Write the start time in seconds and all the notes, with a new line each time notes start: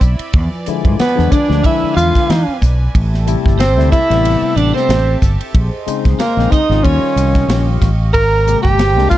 Already playing: E4 D5 E5 B5
0.01 B1, kick, hi-hat pedal, ride
0.19 muted fingered electric bass stroke, ride
0.31 E2 F3 B4 G#5, kick, ride
0.66 D3 F3 G#3 E4, muted fingered electric bass stroke, hi-hat pedal, ride
0.85 G#2, kick, ride
0.99 B3 B4, muted fingered electric bass stroke, snare, ride
1.15 E2 D3 F3 G#3 D4, snare
1.32 D4 D5, kick, hi-hat pedal, ride
1.48 D2 D3 F3 G#3 D4, snare
1.63 E4 E5, kick, ride
1.83 muted fingered electric bass stroke
1.95 E2 F4 F5, hi-hat pedal, ride
2.15 kick, snare, ride
2.30 E3, snare, ride
2.48 muted fingered electric bass stroke
2.62 B1, kick, snare, hi-hat pedal, ride
2.95 A1 G4 A4 E5 A5, kick, ride
3.14 snare
3.26 C3 G3 A3 E4, hi-hat pedal, ride
3.46 G1, kick, snare
3.59 C4 C5, snare, ride
3.77 D2 C3 G3 A3 E4, snare
3.92 E4 E5, kick, hi-hat pedal, ride
4.09 A1 C3 G3 A3 B3, snare, ride
4.25 ride
4.42 muted fingered electric bass stroke
4.56 A1 D4 D5, hi-hat pedal, ride
4.74 C4 C5, snare
4.89 A1, snare, ride
5.22 G1, kick, snare, hi-hat pedal, ride
5.41 ride
5.53 A#1 G#4 C5 D#5 C6, kick, ride
5.86 C#3 G#3 C4 D#4, muted fingered electric bass stroke, hi-hat pedal, ride
6.05 C#2, kick, snare, ride
6.18 A#3 A#4, muted fingered electric bass stroke, snare, ride
6.36 A#1 C#3 G#3 C4 D#4, snare
6.51 D#4 D#5, kick, hi-hat pedal, ride
6.70 G#1 C#3 G#3 C4 F4, snare
6.83 D#2 D#3 G3 C#4 F4 G4 C#5 F5 C#6, kick, ride
7.03 muted fingered electric bass stroke
7.16 C2, hi-hat pedal, ride
7.35 kick, snare, ride
7.48 A#1, snare, ride
7.82 A1, kick, snare, hi-hat pedal, ride
8.12 G#3 A#4 C5 G5 A#5, kick, ride
8.46 C3 G#3 A#3 G4, hi-hat pedal, ride
8.62 G1 G4 G5, kick, snare
8.79 snare, ride
8.96 C2 C3 G#3 A#3 D4, snare
9.09 F4 F5, kick, hi-hat pedal, ride